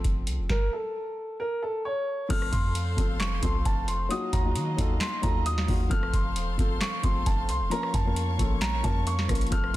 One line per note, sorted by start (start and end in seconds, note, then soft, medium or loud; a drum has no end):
0.00 0.52 F3 loud
0.00 0.52 A3 medium
0.00 0.52 C4 medium
0.00 0.52 F4 medium
0.00 0.52 A4 loud
0.04 0.29 F1 loud
0.04 kick loud
0.04 closed hi-hat medium
0.27 0.40 C2 loud
0.27 closed hi-hat medium
0.39 0.49 F1 loud
0.49 0.69 A#4 loud
0.49 kick loud
0.49 snare medium
0.73 1.36 A4 medium
1.40 1.59 A#4 medium
1.62 1.82 A4 medium
1.85 2.27 C#5 medium
2.29 2.52 F1 loud
2.29 2.87 F3 loud
2.29 2.87 A3 medium
2.29 2.88 C4 loud
2.29 2.88 F4 medium
2.29 4.09 A4 medium
2.29 2.88 A4 loud
2.29 4.09 C5 medium
2.29 4.09 F5 medium
2.29 4.09 C6 medium
2.29 2.50 F6 medium
2.29 kick loud
2.29 closed hi-hat medium
2.29 crash loud
2.42 cross-stick medium
2.52 2.96 F2 loud
2.52 3.16 C6 medium
2.52 kick loud
2.52 closed hi-hat medium
2.75 closed hi-hat loud
2.96 3.41 F1 loud
2.96 3.36 F3 medium
2.96 3.36 A3 medium
2.96 3.36 C4 medium
2.96 3.37 F4 medium
2.96 3.37 A4 medium
2.96 kick medium
2.96 closed hi-hat medium
3.20 3.39 C#6 medium
3.20 snare loud
3.20 clap loud
3.20 closed hi-hat medium
3.41 3.64 C2 loud
3.41 4.00 F3 medium
3.41 4.00 A3 medium
3.41 4.01 C4 medium
3.41 4.01 F4 medium
3.41 4.01 A4 medium
3.41 3.62 C6 medium
3.41 kick medium
3.41 closed hi-hat medium
3.65 4.09 F1 loud
3.65 3.85 A5 medium
3.65 kick loud
3.65 closed hi-hat medium
3.88 4.07 C6 medium
3.88 closed hi-hat medium
4.09 4.39 F#3 loud
4.09 5.89 F#3 medium
4.09 4.39 A#3 medium
4.09 4.39 D#4 medium
4.09 4.40 F4 medium
4.09 4.40 F#4 loud
4.09 5.89 D#5 medium
4.09 9.77 F5 medium
4.09 4.30 D#6 loud
4.09 closed hi-hat medium
4.33 4.57 D#2 loud
4.33 4.97 A#5 medium
4.33 kick loud
4.33 closed hi-hat medium
4.43 4.72 F#3 medium
4.43 4.73 A#3 medium
4.43 4.73 D#4 medium
4.43 4.74 F4 medium
4.43 4.74 F#4 medium
4.56 4.77 D#3 loud
4.56 closed hi-hat loud
4.77 5.00 D#2 loud
4.77 5.16 F#3 medium
4.77 5.16 A#3 medium
4.77 5.17 D#4 medium
4.77 5.17 F4 medium
4.77 5.17 A4 medium
4.77 kick medium
4.77 closed hi-hat medium
5.00 5.20 C6 medium
5.00 snare loud
5.00 clap loud
5.00 closed hi-hat medium
5.22 5.67 D#2 loud
5.22 5.61 F#3 medium
5.22 5.61 A#3 medium
5.22 5.62 D#4 medium
5.22 5.62 F4 medium
5.22 5.62 A4 medium
5.22 5.43 A#5 medium
5.22 kick medium
5.22 closed hi-hat medium
5.46 5.88 D#6 medium
5.46 closed hi-hat medium
5.58 snare medium
5.67 5.90 D#2 loud
5.67 5.87 F#3 medium
5.67 5.87 A#3 medium
5.67 5.88 D#4 medium
5.67 5.88 F4 medium
5.67 5.88 F#4 medium
5.67 kick medium
5.67 open hi-hat medium
5.89 6.13 F1 loud
5.89 6.48 F3 loud
5.89 6.48 A3 medium
5.89 6.49 C4 medium
5.89 6.49 F4 medium
5.89 7.69 A4 medium
5.89 6.49 A4 loud
5.89 7.69 C5 medium
5.89 7.69 C6 medium
5.89 6.10 F6 loud
5.89 kick loud
5.89 closed hi-hat medium
6.03 cross-stick medium
6.13 6.37 F1 loud
6.13 6.77 C6 medium
6.13 kick loud
6.13 closed hi-hat medium
6.36 6.49 D#1 loud
6.36 closed hi-hat loud
6.48 6.58 F1 loud
6.57 6.80 F1 loud
6.57 6.96 F3 medium
6.57 6.97 A3 medium
6.57 6.97 C4 medium
6.57 6.97 F4 medium
6.57 6.98 A4 medium
6.57 kick medium
6.57 closed hi-hat medium
6.81 7.01 C#6 loud
6.81 snare loud
6.81 clap loud
6.81 closed hi-hat medium
7.02 7.25 F1 loud
7.02 7.61 F3 medium
7.02 7.61 A3 medium
7.02 7.61 C4 medium
7.02 7.62 F4 medium
7.02 7.62 A4 medium
7.02 7.23 C6 medium
7.02 kick medium
7.02 closed hi-hat medium
7.26 7.50 F1 loud
7.26 7.46 A5 medium
7.26 kick loud
7.26 closed hi-hat medium
7.49 7.62 C2 loud
7.49 7.68 C6 medium
7.49 closed hi-hat medium
7.61 7.71 F1 loud
7.70 8.00 F3 loud
7.70 8.00 A#3 medium
7.70 9.50 A#3 medium
7.70 8.00 C#4 loud
7.70 8.01 F4 loud
7.70 8.01 A#4 loud
7.70 9.50 C#5 medium
7.70 7.91 A#5 loud
7.70 9.50 C#6 medium
7.70 closed hi-hat medium
7.83 cross-stick medium
7.94 8.37 F2 loud
7.94 8.58 A5 medium
7.94 kick loud
7.94 closed hi-hat medium
8.04 8.33 F3 medium
8.04 8.34 A#3 medium
8.04 8.34 C#4 medium
8.04 8.34 F4 medium
8.04 8.35 A#4 medium
8.16 closed hi-hat loud
8.38 8.82 A#1 loud
8.38 8.77 F3 medium
8.38 8.77 A#3 medium
8.38 8.78 C#4 medium
8.38 8.78 F4 medium
8.38 8.78 A4 medium
8.38 kick medium
8.38 closed hi-hat medium
8.61 8.81 A#5 loud
8.61 snare loud
8.61 clap loud
8.61 closed hi-hat medium
8.83 9.27 F2 loud
8.83 9.22 F3 medium
8.83 9.22 A#3 medium
8.83 9.23 C#4 medium
8.83 9.23 F4 medium
8.83 9.23 A#4 medium
8.83 9.04 A5 medium
8.83 kick medium
8.83 closed hi-hat medium
9.07 9.49 C#6 medium
9.07 closed hi-hat medium
9.19 snare medium
9.28 9.51 A#1 loud
9.28 9.48 F3 medium
9.28 9.48 A#3 medium
9.28 9.49 C#4 medium
9.28 9.49 F4 medium
9.28 9.49 A#4 medium
9.28 kick medium
9.28 cross-stick medium
9.28 closed hi-hat medium
9.35 closed hi-hat medium
9.41 closed hi-hat medium
9.47 9.77 F3 loud
9.47 closed hi-hat soft
9.51 9.73 F1 loud
9.51 9.77 A3 medium
9.51 9.77 C4 loud
9.51 9.77 F4 medium
9.51 9.77 A4 medium
9.51 9.77 A4 loud
9.51 9.77 C5 medium
9.51 9.77 C6 medium
9.51 9.71 F6 medium
9.51 kick loud
9.51 closed hi-hat medium
9.64 cross-stick medium